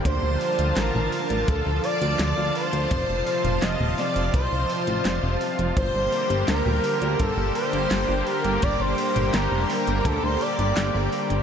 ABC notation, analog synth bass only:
X:1
M:4/4
L:1/16
Q:1/4=84
K:Gm
V:1 name="Analog synth bass" clef=bass
D,, D,, z D,, A,,, A,,, z A,,, D,, D,, z D,, D,, D,, z D,, | F,,, F,,, z F,,, F,,, E,,, z F,,, C,, C,, z A,,, F,,, F,,, z F,,, | G,,, G,,, z G,,, D,, D,, z D,, G,,, G,,, z G,,, G,,, G,,, z G,,, | G,,, G,,, z G,,, G,,, F,,, z G,,, D,, D,, z G,,, G,,, G,,, z G,,, |]